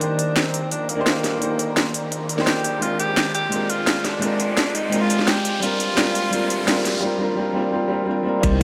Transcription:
0.00 0.62 C2 loud
0.00 2.78 D#3 medium
0.00 2.83 D#3 medium
0.00 0.96 A#3 loud
0.00 0.97 D4 medium
0.00 0.38 D4 medium
0.00 0.98 D#4 medium
0.00 0.03 G4 medium
0.00 0.97 G4 medium
0.00 0.04 C5 loud
0.00 0.97 C5 medium
0.00 2.83 D5 medium
0.00 5.59 D5 medium
0.00 2.78 A#5 medium
0.00 closed hi-hat medium
0.00 riser medium
0.19 closed hi-hat loud
0.36 0.71 C4 medium
0.36 snare loud
0.36 closed hi-hat medium
0.54 closed hi-hat medium
0.71 0.87 A#1 medium
0.71 0.90 D4 medium
0.71 closed hi-hat medium
0.89 2.02 G1 loud
0.89 2.03 A#3 medium
0.89 closed hi-hat medium
0.96 1.37 A#3 loud
0.96 1.39 D4 medium
0.96 1.40 D#4 medium
0.96 1.40 G4 medium
1.01 1.41 C5 loud
1.07 snare loud
1.07 closed hi-hat medium
1.24 snare soft
1.24 closed hi-hat medium
1.39 2.34 A#3 medium
1.39 2.36 D4 medium
1.39 2.36 D#4 medium
1.39 2.37 G4 medium
1.39 closed hi-hat medium
1.44 2.38 C5 medium
1.59 closed hi-hat medium
1.77 snare loud
1.77 closed hi-hat medium
1.94 closed hi-hat medium
2.04 2.28 A#1 loud
2.12 closed hi-hat medium
2.29 closed hi-hat medium
2.36 2.79 A#3 medium
2.36 2.79 D4 medium
2.36 2.80 D#4 medium
2.36 snare soft
2.40 2.81 G4 medium
2.40 2.81 C5 loud
2.47 2.66 F2 medium
2.47 2.84 G4 loud
2.47 snare loud
2.47 closed hi-hat medium
2.64 2.80 A#1 medium
2.64 closed hi-hat medium
2.79 3.42 A#1 loud
2.79 3.48 G#3 medium
2.79 5.60 G#3 medium
2.79 3.49 C4 medium
2.79 3.51 D4 medium
2.79 2.99 F4 loud
2.79 3.51 F4 medium
2.79 5.60 C6 medium
2.79 closed hi-hat medium
2.85 3.52 A#4 medium
3.00 3.32 G4 loud
3.00 closed hi-hat medium
3.17 snare loud
3.17 closed hi-hat medium
3.35 3.71 G4 loud
3.35 closed hi-hat medium
3.49 3.68 G#1 medium
3.49 4.18 G#3 medium
3.49 4.19 C4 medium
3.49 4.21 D4 medium
3.49 closed hi-hat medium
3.54 4.22 F4 medium
3.54 4.22 A#4 medium
3.70 4.83 F1 loud
3.70 4.06 F4 loud
3.70 closed hi-hat medium
3.87 snare loud
3.87 closed hi-hat medium
4.05 4.77 D4 medium
4.05 snare soft
4.05 closed hi-hat medium
4.19 4.88 G#3 medium
4.19 4.90 C4 medium
4.19 4.91 D4 medium
4.19 closed hi-hat medium
4.24 4.92 F4 medium
4.24 4.92 A#4 medium
4.40 closed hi-hat medium
4.57 snare loud
4.57 closed hi-hat medium
4.75 5.03 D#4 loud
4.75 closed hi-hat medium
4.84 5.09 G#1 loud
4.90 5.60 G#3 medium
4.90 5.60 C4 medium
4.90 5.61 D4 medium
4.90 5.62 F4 medium
4.90 closed hi-hat medium
4.95 5.63 A#4 medium
5.02 5.29 F4 loud
5.10 5.26 F1 loud
5.10 closed hi-hat medium
5.19 snare soft
5.28 5.62 G4 loud
5.28 snare loud
5.28 closed hi-hat medium
5.45 closed hi-hat medium
5.60 6.23 G1 loud
5.60 5.93 G3 medium
5.60 5.95 C4 medium
5.60 5.96 D4 medium
5.60 6.99 F4 loud
5.60 7.02 G4 medium
5.60 7.02 F5 medium
5.60 7.02 C6 medium
5.60 closed hi-hat medium
5.64 5.97 F4 medium
5.64 5.98 A#4 medium
5.80 closed hi-hat medium
5.95 6.29 G3 medium
5.95 6.30 C4 medium
5.95 6.31 D4 medium
5.95 snare loud
5.95 closed hi-hat medium
5.99 6.32 F4 medium
5.99 6.33 A#4 medium
6.15 closed hi-hat medium
6.30 6.49 F1 medium
6.30 6.64 G3 medium
6.30 6.65 C4 medium
6.30 6.66 D4 medium
6.30 6.67 F4 medium
6.30 closed hi-hat medium
6.36 6.68 A#4 medium
6.50 7.03 D2 loud
6.50 closed hi-hat medium
6.65 6.99 G3 medium
6.65 7.00 C4 medium
6.65 7.01 D4 medium
6.65 7.02 F4 medium
6.65 snare loud
6.65 closed hi-hat medium
6.71 7.03 A#4 medium
6.85 snare soft
6.85 closed hi-hat medium
7.00 7.16 G3 medium
7.00 7.17 C4 medium
7.00 7.19 D4 medium
7.00 7.20 F4 medium
7.06 7.21 A#4 loud
7.18 7.34 G3 medium
7.18 7.35 C4 medium
7.18 7.37 D4 medium
7.18 7.37 F4 medium
7.23 7.38 A#4 loud
7.35 7.51 G3 medium
7.35 7.53 C4 medium
7.35 7.54 D4 medium
7.39 7.55 F4 medium
7.39 7.56 A#4 loud
7.53 7.69 G3 medium
7.53 7.70 C4 medium
7.53 7.71 D4 medium
7.57 7.72 F4 medium
7.57 7.73 A#4 loud
7.70 7.86 G3 medium
7.70 7.88 C4 medium
7.70 7.89 D4 medium
7.74 7.90 F4 medium
7.74 7.91 A#4 medium
7.88 8.04 G3 medium
7.88 8.05 C4 medium
7.88 8.07 D4 medium
7.92 8.08 F4 medium
7.92 8.08 A#4 loud
8.05 8.22 G3 medium
8.05 8.23 C4 medium
8.05 8.24 D4 medium
8.05 8.25 F4 medium
8.11 8.26 A#4 loud
8.23 8.41 G3 medium
8.23 8.41 C4 medium
8.23 8.42 D4 medium
8.27 8.43 F4 medium
8.27 8.43 A#4 loud
8.40 8.63 C2 loud
8.40 8.63 A#3 medium
8.40 8.63 D#4 medium
8.40 8.63 D5 medium
8.40 kick loud
8.40 closed hi-hat medium
8.40 ride medium
8.44 8.63 G4 medium
8.44 8.63 C5 medium

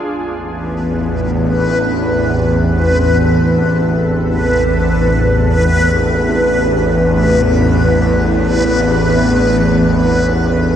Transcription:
0.00 10.76 A1 medium
0.00 10.76 E2 medium
0.00 10.03 C4 medium
0.00 10.76 D4 medium
0.00 10.76 B4 medium
1.00 8.22 A4 medium
9.13 10.76 F4 medium

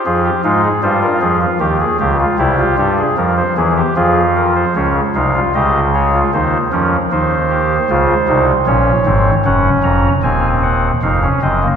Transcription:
0.06 0.30 F2 medium
0.06 0.30 F3 medium
0.06 0.30 F4 medium
0.06 0.23 G#4 medium
0.25 0.42 G4 medium
0.44 0.68 G#2 medium
0.44 0.68 G#3 medium
0.44 0.68 D#4 medium
0.44 0.61 F4 medium
0.64 0.81 G#4 medium
0.83 1.07 G2 medium
0.83 1.07 G3 medium
0.83 1.39 F4 medium
0.83 1.00 C5 medium
1.02 1.19 A#4 medium
1.21 1.46 F2 medium
1.21 1.46 F3 medium
1.21 1.39 G#4 medium
1.41 1.58 F4 medium
1.60 1.85 D#2 medium
1.60 1.85 D#3 medium
1.60 1.77 G4 medium
1.80 1.97 G#4 medium
2.00 2.24 C#2 medium
2.00 2.24 C#3 medium
2.00 2.17 G4 medium
2.19 2.36 F4 medium
2.38 2.63 C2 medium
2.38 2.63 C3 medium
2.38 2.56 E4 medium
2.38 2.76 G4 medium
2.59 2.76 F4 medium
2.78 3.02 G2 medium
2.78 3.02 G3 medium
2.78 2.95 G4 medium
2.98 3.15 G#4 medium
3.17 3.42 F2 medium
3.17 3.42 F3 medium
3.17 3.35 A#4 medium
3.37 3.54 C5 medium
3.57 3.82 E2 medium
3.57 3.82 E3 medium
3.57 3.74 G#4 medium
3.76 3.94 G4 medium
3.96 4.65 F2 medium
3.96 4.65 F3 medium
3.96 4.65 F4 medium
3.96 4.21 G#4 medium
4.36 4.53 A#4 medium
4.56 4.73 C5 medium
4.76 5.01 C#2 medium
4.76 5.01 C#3 medium
4.76 5.01 C#4 medium
4.76 5.01 C#5 medium
5.15 5.40 C2 medium
5.15 5.40 C3 medium
5.15 5.32 D#4 medium
5.15 5.40 F5 medium
5.35 5.52 F4 medium
5.55 6.23 C#2 medium
5.55 6.23 C#3 medium
5.55 5.79 G4 medium
5.55 5.79 D#5 medium
5.94 6.11 G#4 medium
5.94 6.19 C#5 medium
6.13 6.31 F4 medium
6.34 6.58 D#2 medium
6.34 6.58 D#3 medium
6.34 6.58 D#4 medium
6.34 6.58 C5 medium
6.72 6.97 F2 medium
6.72 6.97 F3 medium
6.72 6.97 C#4 medium
6.72 6.97 A#4 medium
7.12 7.79 D#2 medium
7.12 7.79 D#3 medium
7.12 7.36 D#4 medium
7.12 8.46 C5 medium
7.50 7.74 G4 medium
7.90 8.14 C#2 medium
7.90 8.14 C#3 medium
7.90 8.14 F4 medium
8.28 8.52 C2 medium
8.28 8.52 C3 medium
8.28 8.52 D#4 medium
8.67 8.91 A#1 medium
8.67 8.92 A#2 medium
8.67 8.91 C#4 medium
8.67 9.34 C#5 medium
9.06 9.31 G#1 medium
9.06 9.30 G#2 medium
9.06 9.31 C4 medium
9.45 9.70 F#1 medium
9.45 9.70 F#2 medium
9.45 10.13 C#4 medium
9.45 9.70 F#5 medium
9.84 10.08 F1 medium
9.84 10.08 F2 medium
9.84 10.09 A#5 medium
10.23 10.92 D#1 medium
10.23 10.92 D#2 medium
10.23 10.91 C4 medium
10.23 10.48 G#5 medium
10.63 10.88 F#5 medium
11.03 11.27 F1 medium
11.03 11.27 F2 medium
11.03 11.20 D#4 medium
11.03 11.27 F5 medium
11.23 11.40 C#4 medium
11.42 11.67 F#1 medium
11.42 11.67 F#2 medium
11.42 11.60 C4 medium
11.42 11.67 D#5 medium
11.63 11.76 A#3 medium

